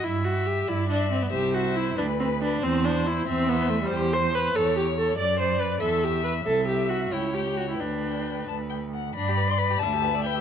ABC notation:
X:1
M:6/8
L:1/16
Q:3/8=93
K:Clyd
V:1 name="Violin"
z2 e6 e4 | e2 e4 B2 B4 | c2 c6 c4 | [K:G] z2 c4 ^c2 c4 |
z2 d4 e2 e4 | z2 e4 g2 g4 | z2 g4 a2 g2 f2 | b3 c' b2 a4 g2 |]
V:2 name="Violin"
e6 d6 | c6 B6 | c6 e6 | [K:G] c6 ^c6 |
d6 e6 | e6 ^c6 | B8- B z3 | D G B d B G D G B d B G |]
V:3 name="Viola"
E2 F2 G2 E2 D2 C B, | G2 F2 E2 D2 C2 D2 | C2 D2 E2 C2 B,2 A, G, | [K:G] G2 c2 B2 A2 G2 A2 |
d2 c2 B2 A2 G2 B2 | A2 G2 F2 E2 G2 F E | D6 z6 | d6 e6 |]
V:4 name="Cello" clef=bass
G,,6 G,,6 | C,,6 D,,6 | E,,6 E,,6 | [K:G] E,,6 E,,6 |
F,,6 E,,6 | C,,6 ^C,,6 | D,,6 D,,6 | G,,6 D,,6 |]